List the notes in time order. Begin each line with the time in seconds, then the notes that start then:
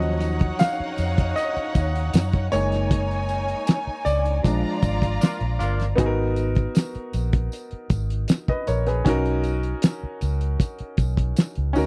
Already playing: D#2 F3 F#3 C#4 D#4 C#5 D#5 F#5
0.02 closed hi-hat
0.20 closed hi-hat, tambourine
0.39 kick, closed hi-hat
0.59 F5, snare, closed hi-hat, tambourine
0.80 muted fingered electric bass stroke
0.98 F2, closed hi-hat, tambourine
1.18 kick, closed hi-hat
1.36 D#5, closed hi-hat, tambourine
1.57 muted fingered electric bass stroke, closed hi-hat
1.75 D#2, kick, closed hi-hat, tambourine
1.96 closed hi-hat
2.13 F#2, snare, closed hi-hat, tambourine
2.32 kick, closed hi-hat
2.51 F#1 G#3 A#3 D#4 C#5 G#5, closed hi-hat, tambourine
2.72 snare, closed hi-hat
2.91 kick, closed hi-hat
3.11 closed hi-hat
3.29 closed hi-hat, tambourine
3.48 closed hi-hat
3.67 snare, closed hi-hat, tambourine
3.87 muted fingered electric bass stroke
4.05 C#2 D5, closed hi-hat, tambourine
4.25 closed hi-hat
4.43 A#1 F3 G#3 D4 F4 D5 A#5, kick, closed hi-hat, tambourine
4.64 muted fingered electric bass stroke
4.82 G#1, kick, closed hi-hat, tambourine
5.02 kick, closed hi-hat
5.21 A#3 D4 F4, snare, closed hi-hat, tambourine
5.40 A#1, closed hi-hat
5.59 G1 A#3 D4 F4, closed hi-hat, tambourine
5.80 snare, closed hi-hat
5.96 G#1 B3 D#4 F#4, kick, closed hi-hat
6.00 G#4
6.06 A#4
6.36 closed hi-hat, tambourine
6.55 kick, closed hi-hat
6.75 snare, closed hi-hat, tambourine
6.95 muted fingered electric bass stroke, closed hi-hat
7.13 A#1, closed hi-hat, tambourine
7.33 kick, closed hi-hat
7.52 closed hi-hat, tambourine
7.71 muted fingered electric bass stroke, closed hi-hat
7.90 G#1, kick, closed hi-hat, tambourine
8.10 closed hi-hat
8.28 snare, closed hi-hat, tambourine
8.48 B4 D#5, muted fingered electric bass stroke, kick
8.67 A#1 A#4 C#5, closed hi-hat, tambourine
8.86 G#4 B4, snare, closed hi-hat
9.05 B1 C#4 D#4 F#4, kick, closed hi-hat, tambourine
9.09 A#4
9.26 closed hi-hat
9.44 closed hi-hat, tambourine
9.63 closed hi-hat
9.82 snare, closed hi-hat, tambourine
10.03 muted fingered electric bass stroke
10.21 C#2, closed hi-hat, tambourine
10.41 closed hi-hat
10.60 kick, closed hi-hat, tambourine
10.79 muted fingered electric bass stroke, closed hi-hat
10.97 B1, kick, closed hi-hat, tambourine
11.17 kick, closed hi-hat
11.36 snare, closed hi-hat, tambourine
11.55 C#2, closed hi-hat
11.73 D2 C#4 D#4 F#4, open hi-hat, tambourine
11.78 A#4